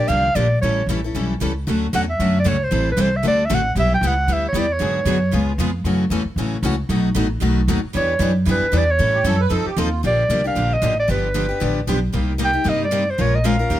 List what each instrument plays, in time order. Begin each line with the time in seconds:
0.08 upright bass C2, steel-string acoustic guitar D3 F3 A#3 D4 G4, clarinet F5
0.35 upright bass A#1, steel-string acoustic guitar D3 F3 A#3 D4 G4, clarinet D5
0.61 upright bass A1, steel-string acoustic guitar E3 G3 C#4 E4 A4, clarinet C#5
0.87 upright bass A1, steel-string acoustic guitar E3 G3 C#4 E4 A4
1.04 steel-string acoustic guitar C#4 E4 A4
1.15 upright bass B1, steel-string acoustic guitar E3 G3 C#4 E4 A4
1.41 upright bass C#2, steel-string acoustic guitar E3 G3 C#4 E4 A4
1.67 upright bass D2, steel-string acoustic guitar D3 F#3 A3 C#4 F#4 A4
1.93 upright bass E2, steel-string acoustic guitar D3 F#3 A3 C#4 F#4 A4, clarinet F#5
2.10 clarinet E5
2.19 upright bass F#2, steel-string acoustic guitar D3 F#3 A3 C#4 F#4 A4
2.40 clarinet D5
2.44 upright bass C#2, steel-string acoustic guitar D3 F#3 A3 C#4 F#4 A4, clarinet C#5
2.64 clarinet C5
2.71 upright bass A1, steel-string acoustic guitar E3 G3 C4 E4 A4
2.92 clarinet B4
2.97 upright bass C2, steel-string acoustic guitar E3 G3 C4 E4 A4
3.02 clarinet C5
3.16 clarinet E5
3.24 upright bass D2, steel-string acoustic guitar D3 A3 C4 F#4 A4, clarinet D5
3.45 clarinet E5
3.50 upright bass A1, steel-string acoustic guitar D3 A3 C4 F#4 A4
3.55 clarinet F#5
3.75 upright bass B1, steel-string acoustic guitar G3 B3 E4 G4
3.79 clarinet E5
3.94 clarinet G5
4.01 upright bass C#2, steel-string acoustic guitar G3 B3 E4 G4
4.07 clarinet F#5
4.27 upright bass D2, steel-string acoustic guitar G3 B3 E4 G4
4.33 clarinet E5
4.48 clarinet C#5
4.53 upright bass E2, steel-string acoustic guitar G3 B3 E4 G4
4.59 clarinet D5
4.73 clarinet C#5
4.80 upright bass G#2, steel-string acoustic guitar D3 F#3 B3 F#4 G#4
5.05 upright bass F#2, steel-string acoustic guitar D3 F#3 B3 F#4 G#4
5.33 upright bass C#2, steel-string acoustic guitar C#3 G#3 B3 F4 G#4
5.58 upright bass F2, steel-string acoustic guitar C#3 G#3 B3 F4 G#4
5.84 upright bass F#2, steel-string acoustic guitar C#3 E3 F#3 A3 C#4 E4 F#4 A4
6.10 upright bass E2, steel-string acoustic guitar C#3 E3 F#3 A3 C#4 E4 F#4 A4
6.25 muted upright bass stroke
6.36 upright bass A1, steel-string acoustic guitar C#3 E3 F#3 A3 C#4 E4 F#4 A4
6.63 upright bass C#2, steel-string acoustic guitar C#3 E3 F#3 A3 C#4 E4 F#4 A4
6.89 upright bass B1, steel-string acoustic guitar B2 D#3 F#3 A3 B3 D#4 F#4 A4
7.15 upright bass A1, steel-string acoustic guitar B2 D#3 F#3 A3 B3 D#4 F#4 A4
7.41 upright bass B1, steel-string acoustic guitar B2 D#3 F#3 A3 B3 D#4 F#4 A4
7.68 upright bass D#2, steel-string acoustic guitar B2 D#3 F#3 A3 B3 D#4 F#4 A4
7.83 muted upright bass stroke
7.93 upright bass E2, steel-string acoustic guitar E3 G3 B3 D4 E4 G4 B4, clarinet C#5
8.19 upright bass F#2, steel-string acoustic guitar E3 G3 B3 D4 E4 G4 B4
8.46 upright bass G2, steel-string acoustic guitar E3 G3 B3 D4 E4 G4 B4
8.51 clarinet B4
8.62 muted upright bass stroke
8.72 upright bass E2, steel-string acoustic guitar E3 G3 B3 D4 E4 G4 B4
8.78 clarinet D5
8.91 clarinet C#5
8.99 upright bass A2, steel-string acoustic guitar E3 G3 C#4 E4 A4
9.14 accordion G4
9.24 upright bass F#2, steel-string acoustic guitar E3 G3 C#4 E4 A4, accordion A4
9.41 accordion B4
9.50 upright bass F2, steel-string acoustic guitar F3 C4 D#4 A4, accordion A4
9.66 accordion G4, muted upright bass stroke
9.77 upright bass D#2, steel-string acoustic guitar F3 C4 D#4 A4, accordion F4
10.03 upright bass A#1, steel-string acoustic guitar D3 F3 A#3 D4 G4, clarinet D5
10.29 upright bass C2, steel-string acoustic guitar D3 F3 A#3 D4 G4
10.44 steel-string acoustic guitar A#3 D4 G4, clarinet F5
10.55 upright bass A#1, steel-string acoustic guitar D3 F3 A#3 D4 G4
10.73 clarinet D#5
10.82 upright bass A1, steel-string acoustic guitar D3 F3 A#3 D4 G4
11.00 clarinet D5
11.08 upright bass G1, steel-string acoustic guitar D3 F3 B3 D4 G4, clarinet B4
11.34 steel-string acoustic guitar D3 F3 B3 D4 G4
11.49 steel-string acoustic guitar B3 D4 G4
11.60 upright bass A1, steel-string acoustic guitar D3 F3 B3 D4 G4
11.87 upright bass B1, steel-string acoustic guitar D3 F3 B3 D4 G4
12.12 upright bass C2, steel-string acoustic guitar C3 G3 A#3 D#4 G4
12.38 steel-string acoustic guitar C3 G3 A#3 D#4 G4
12.45 clarinet G5
12.53 steel-string acoustic guitar A#3 D#4 G4
12.64 upright bass G2, steel-string acoustic guitar C3 G3 A#3 D#4 G4
12.69 clarinet D#5
12.85 clarinet D5
12.92 steel-string acoustic guitar C3 G3 A#3 D#4 G4
13.10 clarinet C5
13.19 upright bass A#1, steel-string acoustic guitar F3 G#3 C#4 F4 A#4, clarinet C#5
13.35 clarinet D#5
13.45 steel-string acoustic guitar F3 G#3 C#4 F4 A#4, clarinet F5
13.59 steel-string acoustic guitar C#4 F4 A#4
13.70 upright bass D#2, steel-string acoustic guitar D#3 A#3 C#4 G4 A#4